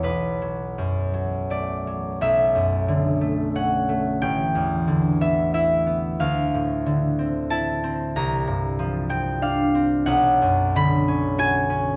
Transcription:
<<
  \new Staff \with { instrumentName = "Harp" } { \time 3/4 \key a \major \tempo 4 = 91 b'2 d''4 | e''2 fis''4 | g''4. e''8 e''4 | f''2 a''4 |
bes''4. g''8 f''4 | fis''4 b''4 gis''4 | }
  \new Staff \with { instrumentName = "Harp" } { \clef bass \time 3/4 \key a \major <b,, b>8 fis8 fis,8 fis8 a8 fis8 | b,,8 fis,8 d8 a8 cis'8 a8 | a,,8 e,8 d8 b8 e'8 b8 | d,8 a,8 d8 c'8 e'8 c'8 |
c,8 g,8 f8 c'8 d'8 c'8 | b,,8 fis,8 d8 cis'8 fis'8 cis'8 | }
>>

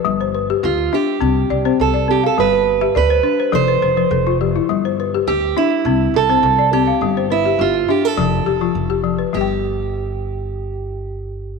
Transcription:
<<
  \new Staff \with { instrumentName = "Balafon" } { \time 4/4 \key g \mixolydian \tempo 4 = 104 << { b'16 c''16 b'8 g'8 e''8. r16 d''16 c''8 d''8 f''16~ | f''16 r8 e''16 d''16 c''16 b'16 c''16 a'16 b'16 c''16 b'16 a'16 f'16 g'16 e'16~ | e'16 c''16 b'8 g'8 e''8. r8 c''8 d''8 f''16~ | f''16 c''16 b'8 g'8 e''8. r16 g'16 f'8 g'8 b'16~ |
b'16 r2. r8. | } \\ { g8 r16 g'8 r16 d'8 c'8 r16 c'8 r16 c'8 | g8 r16 g'8 r16 d'8 f8 r16 f8 r16 f8 | g8 r16 g'8 r16 d'8 c'8 r16 c'8 r16 c'8 | g8 r16 g'8 r16 d'8 f8 r16 f8 r16 f8 |
<g g' g''>1 | } >> }
  \new Staff \with { instrumentName = "Steel-string acoustic guitar" } { \time 4/4 \key g \mixolydian r4 f'8 g'4. a'8 g'16 a'16 | b'4 b'4 c''4. r8 | r4 g'8 e'4 a'4 g'8~ | g'8 e'8 f'8 g'16 a'4.~ a'16 r8 |
g'1 | }
  \new Staff \with { instrumentName = "Upright bass" } { \clef bass \time 4/4 \key g \mixolydian g,,4 d,8 r8 c,8 c,8 c,4 | g,,4 d,8 r8 f,,8 f,,8 f,,4 | g,,4 d,8 r8 c,8 c,8 c,4 | g,,4 g,,8 r8 f,,8 f,,8 f,,4 |
g,,1 | }
>>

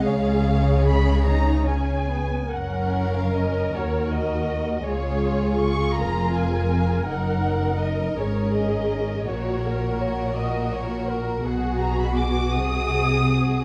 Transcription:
<<
  \new Staff \with { instrumentName = "Violin section" } { \time 6/8 \key fis \major \tempo 4. = 54 eis''4 b''8 ais''8 gis''4 | fis''8. eis''16 dis''8 cis''8 dis''4 | cis''4 cis'''8 ais''8 gis''4 | fis''4 dis''8 cis''8 dis''4 |
cis''4 r2 | fis''8 ais''16 b''16 d'''8 dis'''4. | }
  \new Staff \with { instrumentName = "Viola section" } { \time 6/8 \key fis \major <gis gis'>4. dis'8 cis'8 b8 | ais'2. | gis'4. ais'4.~ | ais'4. gis'4. |
fis'8 ais'8 cis''8 dis''8 cis''8 ais'8 | fis'4. gis'4. | }
  \new Staff \with { instrumentName = "Violin section" } { \time 6/8 \key fis \major << { <gis' cis''>2~ <gis' cis''>8. r16 | ais'4. fis'4. | gis'2. | ais'2. |
ais'2. | gis'4. gis'4. | } \\ { r2. | cis'4. fis'4. | eis'2. | dis'4. cis'4. |
fis'2. | fis'2. | } >> }
  \new Staff \with { instrumentName = "Cello section" } { \clef bass \time 6/8 \key fis \major cis2~ cis8. r16 | fis,4. dis,4. | cis,4. eis,4. | fis,4. gis,4. |
ais,2. | b,4. bis,4. | }
  \new Staff \with { instrumentName = "Double bass section" } { \clef bass \time 6/8 \key fis \major cis,2~ cis,8. r16 | fis,,4. dis,4. | cis,4. eis,,4. | fis,,4. gis,,4. |
ais,,2. | b,,4. bis,,4. | }
>>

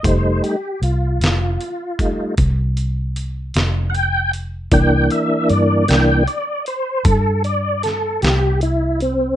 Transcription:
<<
  \new Staff \with { instrumentName = "Tonewheel organ" } { \time 12/8 \key c \mixolydian \tempo 4. = 51 c''8 g'8 f'2 r2 <fis'' g''>8 r8 | g''8 e''8 d''8 g''8 d''8 c''8 a'8 d''8 a'8 g'8 e'8 c'8 | }
  \new Staff \with { instrumentName = "Tonewheel organ" } { \time 12/8 \key c \mixolydian <g a ees'>8 r2 <g a ees'>8 r2. | <e bes d'>4. <e bes d'>8 r1 | }
  \new Staff \with { instrumentName = "Fingered electric bass" } { \clef bass \time 12/8 \key c \mixolydian f,,8 r8 c,8 f,,8 r4 c,4. f,,4. | c,8 r8 g,8 c,8 r4 g,4. c,4. | }
  \new DrumStaff \with { instrumentName = "Drums" } \drummode { \time 12/8 <hh bd>8 hh8 hh8 <hh sn>8 hh8 <hh bd>8 <hh bd>8 hh8 hh8 <hh sn>8 hh8 hh8 | <hh bd>8 hh8 hh8 <hh sn>8 hh8 hh8 <hh bd>8 hh8 <hh sn>8 <hh sn>8 hh8 hh8 | }
>>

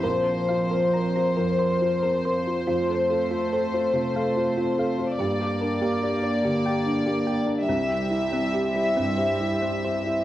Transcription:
<<
  \new Staff \with { instrumentName = "Violin section" } { \time 6/8 \key f \major \tempo 4. = 47 c''2.~ | c''2. | d''2. | e''2. | }
  \new Staff \with { instrumentName = "Synth pluck" } { \time 6/8 \key f \major bes'16 r16 f''16 bes'16 bes''16 bes''16 bes'16 c'''16 r16 bes'16 c'''16 r16 | f'16 r16 a'16 f'16 c''16 c''16 f'16 f''16 r16 f'16 f''16 r16 | g'16 r16 bes'16 g'16 d''16 d''16 g'16 g''16 r16 g'16 g''16 r16 | c'16 r16 e'16 c'16 g'16 g'16 c'16 c''16 r16 c'16 c''16 r16 | }
  \new Staff \with { instrumentName = "Analog synth pad" } { \time 6/8 \key f \major << { <c' bes'>2. | <c' a'>2. | <d' bes'>2. | <e' c''>2. | } \\ { f'2.~ | f'2. | g'2.~ | g'2. | } >> }
  \new Staff \with { instrumentName = "Felt piano" } { \time 6/8 \key f \major bes,,16 bes'16 f'16 c'16 bes'16 f'16 f,16 bes'16 f'16 c'16 bes'16 f'16 | f,16 a'16 f'16 c'16 a'16 f'16 c16 a'16 f'16 c'16 a'16 f'16 | g,16 g'16 d'16 bes16 g'16 d'16 d16 g'16 d'16 bes16 g'16 d'16 | c,16 g'16 e'16 c'16 g'16 e'16 g,16 g'16 e'16 c'16 g'16 e'16 | }
  \new Staff \with { instrumentName = "Cello" } { \clef bass \time 6/8 \key f \major f2~ f8. r16 | a2. | bes2. | g2. | }
>>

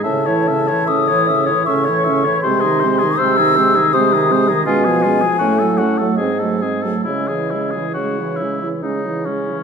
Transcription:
<<
  \new Staff \with { instrumentName = "Flute" } { \time 3/4 \key cis \minor \tempo 4 = 77 a''4 dis'''4 cis'''4 | bis''4 e'''4 dis'''4 | gis''4. fis''8 dis''8 r8 | dis''4 cis''4 r4 | }
  \new Staff \with { instrumentName = "Oboe" } { \time 3/4 \key cis \minor e''16 cis''16 e''16 cis''16 e''16 cis''16 e''16 cis''16 e''16 cis''16 e''16 cis''16 | bis'16 gis'16 bis'16 gis'16 bis'16 gis'16 bis'16 gis'16 bis'16 gis'16 bis'16 gis'16 | eis'16 gis'16 eis'16 gis'16 fis'16 a'16 fis'16 a'16 gis'16 a'16 gis'16 a'16 | e'16 gis'16 e'16 gis'16 fis'8 e'8 dis'8 cis'8 | }
  \new Staff \with { instrumentName = "Clarinet" } { \time 3/4 \key cis \minor cis'16 e'16 cis'16 e'16 cis'16 e'16 cis'16 e'16 cis'16 e'16 cis'16 e'16 | bis16 dis'16 bis16 dis'16 bis16 dis'16 bis16 dis'16 bis16 dis'16 bis16 dis'16 | cis'16 b16 cis'16 b16 cis'16 a16 cis'16 a16 bis16 a16 bis16 a16 | cis'16 e'16 cis'16 e'16 cis'16 e'16 cis'16 e'16 cis'16 e'16 cis'16 e'16 | }
  \new Staff \with { instrumentName = "French horn" } { \clef bass \time 3/4 \key cis \minor cis16 e16 cis16 e16 cis16 e16 cis16 e16 cis16 e16 cis16 e16 | gis16 dis16 gis16 dis16 gis16 dis16 gis16 dis16 gis16 dis16 gis16 dis16 | gis16 eis16 gis16 eis16 a16 fis16 a16 fis16 gis16 fis16 gis16 fis16 | gis16 e16 gis16 e16 gis16 e16 gis16 e16 gis16 e16 gis16 e16 | }
  \new Staff \with { instrumentName = "Bassoon" } { \clef bass \time 3/4 \key cis \minor a,4 a,4 a,4 | bis,4 bis,4 bis,4 | b,4 a,4 gis,4 | cis4 cis4 cis4 | }
>>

